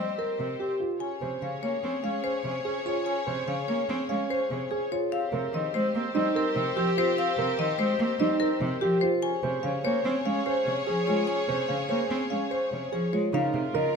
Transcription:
0.00 0.13 G3 medium
0.00 0.12 C4 medium
0.00 0.76 G4 medium
0.00 0.76 C5 medium
0.00 0.25 D#5 medium
0.17 0.32 C4 soft
0.17 0.45 A#4 medium
0.17 0.46 A#4 medium
0.39 0.55 C3 medium
0.39 0.54 C4 soft
0.60 0.74 C4 soft
0.60 0.86 G4 medium
0.60 0.87 G4 medium
0.80 1.07 F4 medium
1.00 1.15 C#4 soft
1.00 4.87 G#4 medium
1.00 4.87 C#5 medium
1.00 1.27 G#5 medium
1.21 1.37 C3 medium
1.21 1.37 C#4 soft
1.21 1.48 C5 medium
1.42 1.57 C#3 medium
1.42 1.56 C#4 soft
1.42 1.69 F5 medium
1.62 1.78 A#3 medium
1.62 1.77 C#4 soft
1.62 1.89 C#5 medium
1.83 1.99 C4 medium
1.83 1.98 C#4 medium
2.03 2.19 G#3 medium
2.03 2.30 C#4 medium
2.03 2.18 C#4 medium
2.03 2.30 F5 medium
2.24 2.38 C#4 medium
2.24 2.51 C5 medium
2.44 2.60 C3 medium
2.44 2.59 C#4 medium
2.65 2.79 C#4 medium
2.65 2.92 G#4 medium
2.86 3.00 C#4 medium
2.86 3.12 F4 medium
2.86 3.13 C#5 medium
3.06 3.21 C#4 medium
3.06 3.33 G#5 medium
3.27 3.42 C3 medium
3.27 3.42 C#4 medium
3.27 3.54 C5 medium
3.47 3.63 C#3 medium
3.47 3.62 C#4 medium
3.47 3.74 F5 medium
3.68 3.83 A#3 medium
3.68 3.82 C#4 medium
3.68 3.95 C#5 medium
3.88 4.04 C4 medium
3.88 4.03 C#4 medium
4.09 4.25 G#3 medium
4.09 4.23 C#4 medium
4.09 4.36 C#4 medium
4.09 4.36 F5 medium
4.29 4.44 C#4 medium
4.29 4.57 C5 medium
4.50 4.66 C3 medium
4.50 4.65 C#4 soft
4.71 4.85 C#4 soft
4.71 4.98 G#4 medium
4.92 5.18 F4 medium
4.92 5.18 C#5 medium
5.12 5.27 C4 soft
5.12 8.98 G4 medium
5.12 8.98 C5 medium
5.12 5.39 F5 medium
5.32 5.48 C3 medium
5.32 5.47 C4 soft
5.32 5.59 A#4 medium
5.53 5.68 D#3 medium
5.53 5.68 C4 soft
5.53 5.80 D#5 medium
5.73 5.89 G#3 medium
5.73 5.88 C4 medium
5.73 6.00 C5 medium
5.95 6.10 A#3 medium
5.95 6.09 C4 medium
6.15 6.30 G3 medium
6.15 6.29 C4 medium
6.15 6.41 D#4 medium
6.15 6.41 D#5 medium
6.35 6.50 C4 medium
6.35 6.62 A#4 medium
6.56 6.71 C3 medium
6.56 6.70 C4 medium
6.76 6.91 F3 medium
6.76 6.91 C4 medium
6.76 7.03 G4 medium
6.97 7.12 C4 medium
6.97 7.24 F4 medium
6.97 7.24 C5 medium
7.18 7.32 C4 medium
7.18 7.44 F5 medium
7.37 7.53 C3 medium
7.37 7.53 C4 medium
7.37 7.65 A#4 medium
7.58 7.74 D#3 medium
7.58 7.73 C4 medium
7.58 7.85 D#5 medium
7.78 7.94 G#3 medium
7.78 7.94 C4 medium
7.78 8.06 C5 medium
7.99 8.15 A#3 medium
7.99 8.14 C4 medium
8.19 8.35 G3 medium
8.19 8.35 C4 medium
8.19 8.47 D#4 medium
8.19 8.47 D#5 medium
8.40 8.55 C4 medium
8.40 8.67 A#4 medium
8.61 8.76 C3 medium
8.61 8.76 C4 soft
8.81 8.97 F3 medium
8.81 8.96 C4 soft
8.81 9.08 G4 medium
9.01 9.29 F4 medium
9.01 9.29 C5 medium
9.22 9.37 C#4 soft
9.22 13.09 G#4 medium
9.22 13.09 C#5 medium
9.22 9.49 G#5 medium
9.43 9.59 C3 medium
9.43 9.58 C#4 soft
9.43 9.70 C5 medium
9.63 9.79 C#3 medium
9.63 9.78 C#4 soft
9.63 9.90 F5 medium
9.84 9.99 A#3 medium
9.84 9.99 C#4 medium
9.84 10.11 C5 medium
9.84 10.11 C#5 medium
10.05 10.20 C4 medium
10.05 10.19 C#4 medium
10.25 10.41 G#3 medium
10.25 10.52 C#4 medium
10.25 10.40 C#4 medium
10.25 10.52 F5 medium
10.45 10.60 C#4 medium
10.45 10.73 C5 medium
10.66 10.82 C3 medium
10.66 10.80 C#4 medium
10.87 11.03 F3 medium
10.87 11.01 C#4 medium
10.87 11.14 G#4 medium
11.07 11.23 G#3 medium
11.07 11.22 C#4 medium
11.07 11.34 F4 medium
11.07 11.34 C#5 medium
11.27 11.42 C#4 medium
11.27 11.55 G#5 medium
11.48 11.64 C3 medium
11.48 11.63 C#4 medium
11.48 11.75 C5 medium
11.68 11.85 C#3 medium
11.68 11.83 C#4 medium
11.68 11.96 F5 medium
11.89 12.05 A#3 medium
11.89 12.04 C#4 medium
11.89 12.16 C5 medium
11.89 12.16 C#5 medium
12.10 12.26 C4 medium
12.10 12.25 C#4 medium
12.30 12.46 G#3 medium
12.30 12.57 C#4 medium
12.30 12.45 C#4 medium
12.30 12.57 F5 medium
12.51 12.66 C#4 soft
12.51 12.78 C5 medium
12.72 12.87 C3 medium
12.72 12.87 C#4 soft
12.92 13.08 F3 medium
12.92 13.07 C#4 soft
12.92 13.19 G#4 medium
13.13 13.28 G#3 medium
13.13 13.40 F4 medium
13.13 13.40 C#5 medium
13.33 13.49 C#3 medium
13.33 13.60 D#4 medium
13.33 13.96 F4 medium
13.33 13.96 A#4 medium
13.33 13.61 F5 medium
13.54 13.69 C3 medium
13.74 13.90 C#3 medium
13.74 13.96 A#4 medium
13.74 13.96 D#5 medium

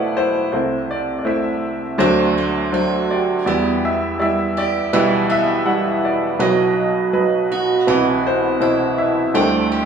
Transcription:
0.00 0.49 B1 medium
0.00 0.49 B2 medium
0.00 0.53 A3 medium
0.00 0.18 E4 medium
0.00 0.51 A4 medium
0.00 0.55 B4 medium
0.00 0.17 C5 medium
0.00 0.18 D5 medium
0.00 0.55 E5 medium
0.00 0.55 F#5 medium
0.17 0.51 E4 medium
0.17 0.51 C5 medium
0.52 1.96 C2 medium
0.52 1.96 C3 medium
0.52 1.08 A3 medium
0.52 1.08 E4 medium
0.52 1.08 C5 medium
0.91 1.17 D5 medium
1.19 1.26 D5 medium
1.25 1.81 A3 medium
1.25 1.81 E4 medium
1.25 1.81 C5 medium
1.25 1.78 E5 medium
1.98 3.42 D2 medium
1.98 3.42 D3 medium
1.98 2.54 F#3 loud
1.98 2.37 A3 medium
1.98 2.54 D4 medium
1.98 2.54 C5 loud
2.38 3.47 A3 soft
2.72 3.28 F#3 medium
2.72 3.28 D4 medium
2.72 3.54 F#4 medium
2.72 3.28 C5 medium
3.11 4.54 G4 medium
3.11 3.44 D5 medium
3.46 4.89 E2 medium
3.46 4.89 E3 medium
3.46 4.01 G3 medium
3.46 5.01 B3 medium
3.46 4.01 E4 medium
3.46 4.01 D5 medium
3.85 4.18 E5 medium
4.19 4.75 G3 medium
4.19 4.74 E4 medium
4.19 4.57 D5 medium
4.19 4.58 E5 medium
4.57 5.01 G4 medium
4.57 4.95 D5 medium
4.93 6.36 B1 medium
4.93 6.36 B2 medium
4.93 6.40 E3 medium
4.93 5.48 G3 medium
4.93 5.48 E4 medium
4.93 6.37 G4 medium
4.93 5.48 B4 medium
4.93 5.30 E5 medium
5.30 6.47 B3 medium
5.30 6.06 E5 loud
5.65 6.21 G3 medium
5.65 6.21 E4 medium
5.65 6.21 F#5 medium
6.05 6.42 D5 medium
6.39 7.83 B1 medium
6.39 7.83 B2 medium
6.39 6.95 F#3 medium
6.39 7.88 F#3 medium
6.39 6.95 D#4 medium
6.39 7.85 F#4 medium
6.39 6.95 B4 medium
6.39 7.47 D#5 medium
7.13 7.69 F#3 medium
7.13 7.69 D#4 medium
7.13 7.69 B4 medium
7.52 7.95 F#4 medium
7.87 9.31 C2 medium
7.87 8.43 B2 medium
7.87 9.31 C3 medium
7.87 9.42 E3 medium
7.87 7.90 E4 medium
7.87 8.43 B4 medium
7.91 8.59 E4 medium
8.27 8.59 C5 medium
8.60 9.16 B2 medium
8.60 9.16 E4 medium
8.60 9.42 E4 soft
8.60 9.16 C5 medium
8.98 9.32 E5 medium
9.34 9.85 D2 medium
9.34 9.85 D3 medium
9.34 9.85 G3 medium
9.34 9.85 A3 medium
9.34 9.85 D4 medium
9.34 9.85 C5 medium
9.34 9.84 G5 medium
9.72 9.85 G4 medium

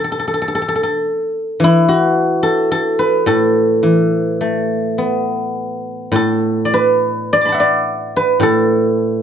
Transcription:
0.00 1.05 B2 soft
0.04 0.11 A4 soft
0.12 0.19 A4 soft
0.19 0.27 A4 soft
0.28 0.33 A4 soft
0.34 0.41 A4 soft
0.42 0.48 A4 soft
0.48 0.55 A4 soft
0.55 0.61 A4 soft
0.62 0.68 A4 soft
0.68 0.75 A4 soft
0.75 0.83 A4 soft
0.83 2.42 A4 soft
1.60 3.82 E3 soft
1.64 4.25 E4 medium
1.89 4.32 F#4 medium
2.43 2.71 A4 medium
2.72 3.27 A4 medium
2.99 5.04 B4 medium
3.26 6.10 A2 soft
3.26 4.38 A4 medium
3.83 6.14 E3 soft
4.38 6.73 A3 soft
4.38 4.58 G#4 medium
4.58 4.77 G4 medium
4.77 5.52 F#4 medium
4.98 7.31 B3 soft
6.12 8.38 A2 medium
6.12 8.35 A4 medium
6.65 7.32 D5 medium
6.74 8.16 B4 medium
7.33 7.59 D5 medium
7.41 8.63 D6 soft
7.45 8.93 A5 soft
7.45 8.80 B5 soft
7.52 9.22 E5 medium
7.52 9.12 F#5 soft
7.60 9.22 D5 medium
8.16 9.22 B4 medium
8.40 9.22 A2 medium
8.40 9.22 A4 medium

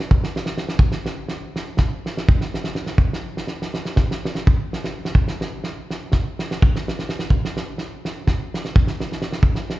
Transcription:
0.11 kick medium
0.24 snare soft
0.36 snare soft
0.46 snare soft
0.58 snare soft
0.69 snare soft
0.79 kick medium
0.92 snare soft
1.06 snare soft
1.28 snare soft
1.56 snare soft
1.77 kick medium
1.77 snare soft
2.06 snare soft
2.17 snare soft
2.29 kick medium
2.41 snare soft
2.54 snare soft
2.64 snare soft
2.75 snare soft
2.86 snare soft
2.98 kick medium
3.13 snare soft
3.37 snare soft
3.47 snare soft
3.62 snare soft
3.74 snare soft
3.85 snare soft
3.96 kick medium
3.96 snare soft
4.11 snare soft
4.25 snare soft
4.35 snare soft
4.47 kick medium
4.73 snare soft
4.84 snare soft
5.05 snare soft
5.15 kick medium
5.28 snare soft
5.41 snare soft
5.64 snare soft
5.90 snare soft
6.12 kick medium
6.12 snare soft
6.39 snare soft
6.51 snare soft
6.62 kick loud
6.76 snare soft
6.88 snare soft
6.99 snare soft
7.09 snare soft
7.19 snare soft
7.30 kick medium
7.45 snare soft
7.57 snare soft
7.78 snare soft
8.05 snare soft
8.27 kick medium
8.27 snare soft
8.54 snare soft
8.65 snare soft
8.76 kick loud
8.87 snare soft
9.00 snare soft
9.12 snare soft
9.22 snare soft
9.32 snare soft
9.43 kick medium
9.55 snare soft
9.70 snare soft

